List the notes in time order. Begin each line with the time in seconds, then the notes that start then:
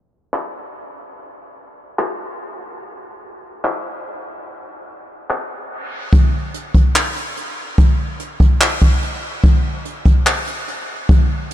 0.34 clap
1.99 clap
3.65 clap
5.30 clap
6.13 kick, closed hi-hat
6.54 closed hi-hat
6.75 kick, closed hi-hat
6.96 clap, closed hi-hat
7.16 closed hi-hat
7.37 closed hi-hat
7.78 kick, closed hi-hat
8.20 closed hi-hat
8.40 kick, closed hi-hat
8.61 clap, closed hi-hat
8.82 kick, closed hi-hat
9.02 closed hi-hat
9.44 kick, closed hi-hat
9.85 closed hi-hat
10.06 kick, closed hi-hat
10.27 clap, closed hi-hat
10.47 closed hi-hat
10.68 closed hi-hat
11.09 kick, closed hi-hat
11.51 closed hi-hat